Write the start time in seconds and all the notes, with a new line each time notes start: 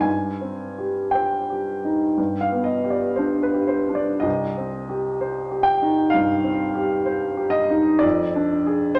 0.00 G2 G#5
0.41 C4
0.79 G4
1.11 C5 G5
1.50 G4
1.84 D#4
2.17 G2
2.41 F5
2.52 B3
2.64 D#5
2.84 G4
2.90 D5
3.16 D4 C5
3.43 B4
3.54 G4
3.67 C5
3.89 D4
3.95 D5
4.20 C2 D#5
4.57 C4
4.89 G4
5.21 C5
5.51 G4
5.63 G5
5.82 D#4
6.10 G2 F5
6.44 C4
6.75 G4
7.06 C5
7.37 G4
7.50 D#5
7.70 D#4
7.99 F2 D5
8.36 D4
8.66 G#4
8.95 C5